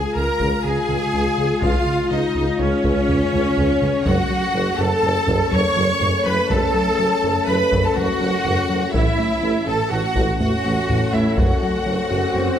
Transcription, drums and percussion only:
0.40 taiko
1.62 taiko
2.84 taiko
3.09 taiko low
3.58 taiko low
4.06 taiko
5.28 taiko
5.52 taiko low
6.01 taiko low
6.50 taiko
7.72 taiko
7.96 taiko low
8.46 taiko low
8.94 taiko
10.16 taiko
10.40 taiko low
10.89 taiko low
11.38 taiko

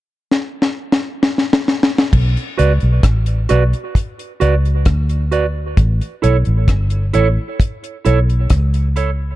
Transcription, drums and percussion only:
0.31 snare
0.62 snare
0.92 snare
1.23 snare
1.38 snare
1.53 snare
1.68 snare
1.83 snare
1.98 snare
2.13 kick, crash
2.37 closed hi-hat
2.59 closed hi-hat
2.80 closed hi-hat
3.03 kick, cross-stick, closed hi-hat
3.26 closed hi-hat
3.49 cross-stick, closed hi-hat
3.73 closed hi-hat
3.95 kick, closed hi-hat
4.19 closed hi-hat
4.41 closed hi-hat
4.65 closed hi-hat
4.85 kick, cross-stick, closed hi-hat
5.09 closed hi-hat
5.32 closed hi-hat
5.77 kick, closed hi-hat
6.01 closed hi-hat
6.24 closed hi-hat
6.45 closed hi-hat
6.68 kick, cross-stick, closed hi-hat
6.90 closed hi-hat
7.14 closed hi-hat
7.60 kick, closed hi-hat
7.84 closed hi-hat
8.05 closed hi-hat
8.30 closed hi-hat
8.50 kick, cross-stick, closed hi-hat
8.74 closed hi-hat
8.96 closed hi-hat

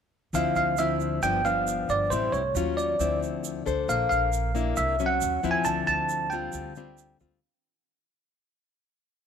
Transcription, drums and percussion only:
0.34 shaker
0.56 shaker
0.77 shaker
1.00 shaker
1.23 shaker
1.45 shaker
1.67 shaker
1.89 shaker
2.12 shaker
2.33 shaker
2.56 shaker
2.78 shaker
3.00 shaker
3.23 shaker
3.44 shaker
3.67 shaker
3.89 shaker
4.11 shaker
4.33 shaker
4.55 shaker
4.76 shaker
4.99 shaker
5.21 shaker
5.43 shaker
5.65 shaker
5.87 shaker
6.09 shaker
6.31 shaker
6.52 shaker
6.75 shaker
6.98 shaker
7.20 shaker

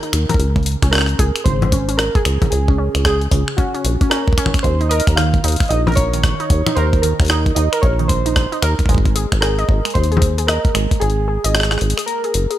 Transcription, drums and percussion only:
0.03 closed hi-hat
0.13 finger snap, closed hi-hat
0.29 closed hi-hat, low conga
0.34 kick
0.40 closed hi-hat
0.56 kick, closed hi-hat
0.63 closed hi-hat
0.66 closed hi-hat
0.72 closed hi-hat
0.82 finger snap, kick, closed hi-hat
0.93 cross-stick, closed hi-hat
0.95 cross-stick
0.98 cross-stick
1.01 cross-stick
1.06 cross-stick, closed hi-hat
1.19 kick, closed hi-hat
1.36 finger snap, closed hi-hat
1.46 kick, closed hi-hat
1.62 closed hi-hat, low conga
1.72 kick, closed hi-hat
1.89 closed hi-hat
1.99 cross-stick, closed hi-hat
2.15 kick, closed hi-hat
2.25 finger snap, closed hi-hat
2.42 kick, closed hi-hat, low conga
2.52 closed hi-hat
2.68 kick
2.95 finger snap, closed hi-hat
3.05 kick, cross-stick, closed hi-hat
3.21 closed hi-hat
3.31 kick, closed hi-hat
3.48 finger snap
3.58 kick, closed hi-hat
3.75 closed hi-hat
3.85 closed hi-hat
4.01 kick, closed hi-hat
4.11 cross-stick, closed hi-hat
4.28 kick
4.33 kick
4.38 finger snap, kick, closed hi-hat
4.46 finger snap, kick, low conga
4.54 finger snap, kick, closed hi-hat
4.59 finger snap
4.64 kick, closed hi-hat
4.81 closed hi-hat
4.91 closed hi-hat
5.00 closed hi-hat
5.07 finger snap, kick, closed hi-hat
5.17 cross-stick, closed hi-hat
5.34 kick, closed hi-hat
5.44 closed hi-hat
5.48 closed hi-hat
5.52 closed hi-hat
5.56 closed hi-hat
5.60 finger snap, kick, closed hi-hat
5.63 closed hi-hat
5.66 closed hi-hat
5.68 closed hi-hat
5.71 closed hi-hat
5.87 closed hi-hat, low conga
5.89 closed hi-hat
5.92 closed hi-hat
5.94 closed hi-hat
5.95 kick, closed hi-hat
5.97 closed hi-hat
6.13 closed hi-hat
6.24 kick, cross-stick, closed hi-hat
6.40 closed hi-hat
6.50 kick, closed hi-hat
6.67 finger snap, closed hi-hat, low conga
6.77 closed hi-hat
6.93 kick, closed hi-hat
7.03 closed hi-hat
7.20 finger snap, kick, closed hi-hat
7.21 closed hi-hat
7.25 closed hi-hat
7.26 closed hi-hat
7.28 cross-stick, closed hi-hat
7.30 closed hi-hat
7.46 kick, closed hi-hat
7.56 closed hi-hat
7.73 finger snap, closed hi-hat
7.83 kick, closed hi-hat
7.99 closed hi-hat
8.09 kick, closed hi-hat
8.26 closed hi-hat
8.36 kick, cross-stick, closed hi-hat
8.52 closed hi-hat
8.62 finger snap, closed hi-hat
8.79 kick, closed hi-hat
8.86 kick
8.89 kick, closed hi-hat
8.95 kick
8.98 kick
9.05 kick, closed hi-hat
9.16 closed hi-hat
9.32 finger snap, kick, closed hi-hat
9.42 cross-stick, closed hi-hat
9.59 closed hi-hat
9.69 kick
9.85 finger snap, closed hi-hat
9.90 closed hi-hat
9.95 kick, closed hi-hat
10.04 closed hi-hat
10.12 closed hi-hat
10.17 low conga
10.22 kick, closed hi-hat
10.38 closed hi-hat
10.48 cross-stick, closed hi-hat
10.65 kick, closed hi-hat
10.75 finger snap, closed hi-hat
10.91 kick, closed hi-hat
11.02 closed hi-hat
11.10 closed hi-hat
11.44 closed hi-hat
11.55 cross-stick, closed hi-hat
11.60 cross-stick
11.63 cross-stick
11.71 cross-stick, closed hi-hat
11.78 cross-stick, closed hi-hat
11.90 closed hi-hat
11.98 finger snap, closed hi-hat
12.08 closed hi-hat
12.24 closed hi-hat
12.34 closed hi-hat
12.51 closed hi-hat

